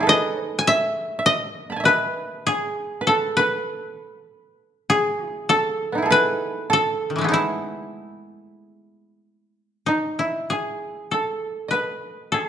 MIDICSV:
0, 0, Header, 1, 3, 480
1, 0, Start_track
1, 0, Tempo, 1185771
1, 32, Time_signature, 4, 2, 24, 8
1, 992, Tempo, 1217039
1, 2912, Tempo, 1284797
1, 3872, Tempo, 1224490
1, 4891, End_track
2, 0, Start_track
2, 0, Title_t, "Koto"
2, 0, Program_c, 0, 107
2, 0, Note_on_c, 0, 63, 37
2, 0, Note_on_c, 0, 64, 42
2, 2, Note_on_c, 0, 68, 47
2, 11, Note_on_c, 0, 69, 53
2, 27, Note_on_c, 0, 71, 59
2, 35, Note_on_c, 0, 75, 83
2, 59, Note_off_c, 0, 64, 0
2, 277, Note_on_c, 0, 76, 81
2, 302, Note_off_c, 0, 63, 0
2, 302, Note_off_c, 0, 75, 0
2, 479, Note_off_c, 0, 76, 0
2, 481, Note_on_c, 0, 76, 58
2, 510, Note_on_c, 0, 75, 72
2, 534, Note_off_c, 0, 76, 0
2, 687, Note_on_c, 0, 83, 35
2, 696, Note_on_c, 0, 81, 38
2, 714, Note_on_c, 0, 80, 40
2, 720, Note_off_c, 0, 68, 0
2, 729, Note_on_c, 0, 76, 43
2, 738, Note_off_c, 0, 69, 0
2, 742, Note_off_c, 0, 75, 0
2, 743, Note_on_c, 0, 75, 45
2, 746, Note_off_c, 0, 71, 0
2, 761, Note_on_c, 0, 71, 74
2, 1002, Note_on_c, 0, 68, 69
2, 1025, Note_off_c, 0, 81, 0
2, 1157, Note_off_c, 0, 83, 0
2, 1211, Note_off_c, 0, 71, 0
2, 1213, Note_on_c, 0, 71, 51
2, 1234, Note_off_c, 0, 80, 0
2, 1244, Note_on_c, 0, 69, 63
2, 1267, Note_off_c, 0, 68, 0
2, 1324, Note_off_c, 0, 76, 0
2, 1359, Note_off_c, 0, 75, 0
2, 1362, Note_off_c, 0, 71, 0
2, 1364, Note_on_c, 0, 71, 62
2, 1957, Note_on_c, 0, 68, 72
2, 1981, Note_off_c, 0, 69, 0
2, 2064, Note_off_c, 0, 71, 0
2, 2194, Note_on_c, 0, 69, 76
2, 2218, Note_off_c, 0, 68, 0
2, 2362, Note_on_c, 0, 59, 33
2, 2372, Note_on_c, 0, 63, 34
2, 2383, Note_on_c, 0, 64, 41
2, 2401, Note_on_c, 0, 68, 44
2, 2413, Note_off_c, 0, 69, 0
2, 2414, Note_on_c, 0, 69, 48
2, 2433, Note_on_c, 0, 71, 76
2, 2665, Note_off_c, 0, 69, 0
2, 2667, Note_on_c, 0, 69, 73
2, 2691, Note_off_c, 0, 68, 0
2, 2883, Note_on_c, 0, 68, 39
2, 2907, Note_off_c, 0, 69, 0
2, 2909, Note_off_c, 0, 64, 0
2, 2911, Note_on_c, 0, 64, 53
2, 2933, Note_off_c, 0, 63, 0
2, 3122, Note_off_c, 0, 71, 0
2, 3397, Note_off_c, 0, 59, 0
2, 3621, Note_off_c, 0, 68, 0
2, 3756, Note_off_c, 0, 64, 0
2, 3870, Note_on_c, 0, 63, 46
2, 3993, Note_on_c, 0, 64, 43
2, 4017, Note_off_c, 0, 63, 0
2, 4119, Note_on_c, 0, 68, 48
2, 4362, Note_on_c, 0, 69, 46
2, 4386, Note_off_c, 0, 68, 0
2, 4576, Note_on_c, 0, 75, 39
2, 4594, Note_on_c, 0, 71, 52
2, 4599, Note_off_c, 0, 64, 0
2, 4831, Note_off_c, 0, 69, 0
2, 4833, Note_on_c, 0, 68, 47
2, 4888, Note_off_c, 0, 68, 0
2, 4888, Note_on_c, 0, 69, 47
2, 4891, Note_off_c, 0, 69, 0
2, 4891, Note_off_c, 0, 71, 0
2, 4891, Note_off_c, 0, 75, 0
2, 4891, End_track
3, 0, Start_track
3, 0, Title_t, "Koto"
3, 0, Program_c, 1, 107
3, 0, Note_on_c, 1, 69, 76
3, 0, Note_on_c, 1, 71, 81
3, 36, Note_on_c, 1, 75, 102
3, 107, Note_off_c, 1, 69, 0
3, 166, Note_off_c, 1, 71, 0
3, 166, Note_off_c, 1, 75, 0
3, 166, Note_on_c, 1, 71, 102
3, 237, Note_on_c, 1, 80, 73
3, 273, Note_on_c, 1, 76, 99
3, 297, Note_off_c, 1, 71, 0
3, 510, Note_on_c, 1, 75, 98
3, 534, Note_off_c, 1, 76, 0
3, 750, Note_on_c, 1, 71, 85
3, 764, Note_off_c, 1, 80, 0
3, 998, Note_on_c, 1, 68, 79
3, 1132, Note_off_c, 1, 75, 0
3, 1236, Note_on_c, 1, 69, 78
3, 1260, Note_off_c, 1, 68, 0
3, 1352, Note_off_c, 1, 71, 0
3, 1353, Note_on_c, 1, 71, 73
3, 1957, Note_on_c, 1, 68, 90
3, 1980, Note_off_c, 1, 69, 0
3, 2054, Note_off_c, 1, 71, 0
3, 2107, Note_off_c, 1, 68, 0
3, 2107, Note_on_c, 1, 64, 90
3, 2192, Note_on_c, 1, 69, 83
3, 2215, Note_off_c, 1, 64, 0
3, 2439, Note_on_c, 1, 71, 84
3, 2679, Note_off_c, 1, 69, 0
3, 2680, Note_on_c, 1, 69, 82
3, 2825, Note_on_c, 1, 51, 29
3, 2848, Note_on_c, 1, 52, 32
3, 2859, Note_on_c, 1, 56, 36
3, 2870, Note_on_c, 1, 57, 39
3, 2882, Note_on_c, 1, 59, 42
3, 2894, Note_off_c, 1, 51, 0
3, 2899, Note_on_c, 1, 63, 46
3, 2918, Note_on_c, 1, 64, 65
3, 2922, Note_off_c, 1, 52, 0
3, 3128, Note_off_c, 1, 71, 0
3, 3404, Note_off_c, 1, 69, 0
3, 3764, Note_off_c, 1, 64, 0
3, 3775, Note_off_c, 1, 63, 0
3, 3863, Note_on_c, 1, 63, 56
3, 3890, Note_off_c, 1, 59, 0
3, 3954, Note_off_c, 1, 57, 0
3, 3983, Note_off_c, 1, 56, 0
3, 3990, Note_on_c, 1, 64, 45
3, 4014, Note_off_c, 1, 63, 0
3, 4111, Note_on_c, 1, 68, 55
3, 4352, Note_on_c, 1, 69, 56
3, 4376, Note_off_c, 1, 68, 0
3, 4585, Note_on_c, 1, 71, 58
3, 4823, Note_off_c, 1, 69, 0
3, 4825, Note_on_c, 1, 69, 57
3, 4877, Note_off_c, 1, 64, 0
3, 4891, Note_off_c, 1, 69, 0
3, 4891, Note_off_c, 1, 71, 0
3, 4891, End_track
0, 0, End_of_file